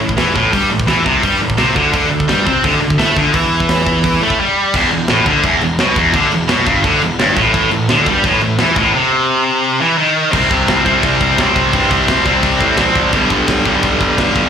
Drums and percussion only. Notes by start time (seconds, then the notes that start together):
0.09 kick
0.18 snare, open hi-hat
0.36 kick
0.53 kick, open hi-hat
0.80 kick
0.88 snare, open hi-hat
1.06 kick
1.23 kick, open hi-hat
1.50 kick
1.58 snare, open hi-hat
1.76 kick
1.93 kick, open hi-hat
2.20 kick
2.29 snare, open hi-hat
2.47 kick
2.64 kick, open hi-hat
2.90 kick
2.99 snare, open hi-hat
3.17 kick
3.33 kick, open hi-hat
3.60 kick
3.69 snare, open hi-hat
3.87 kick
4.04 kick, open hi-hat
4.30 kick
4.74 kick, crash
4.91 crash
5.08 snare, crash
5.26 kick, crash
5.43 kick, crash
5.61 crash
5.79 snare, crash
5.96 kick, crash
6.14 kick, crash
6.32 crash
6.49 snare, crash
6.67 kick, crash
6.84 kick, crash
7.02 crash
7.19 snare, crash
7.37 kick, crash
7.54 kick, crash
7.71 crash
7.89 snare, crash
8.06 kick, crash
8.24 kick, crash
8.41 crash
8.58 snare, crash
8.76 kick, crash
10.33 kick, crash
10.51 kick, crash
10.68 kick, snare, crash
10.86 kick, crash
11.03 kick, crash
11.21 kick, crash
11.38 kick, snare, crash
11.56 kick, crash
11.73 kick, crash
11.91 kick, crash
12.08 kick, snare, crash
12.26 kick, crash
12.43 kick, crash
12.60 kick, crash
12.77 kick, snare, crash
12.96 kick, crash
13.13 kick, crash
13.30 kick, crash
13.48 kick, snare, crash
13.65 kick, crash
13.83 kick, crash
14.01 kick, crash
14.18 kick, snare, crash
14.36 kick, crash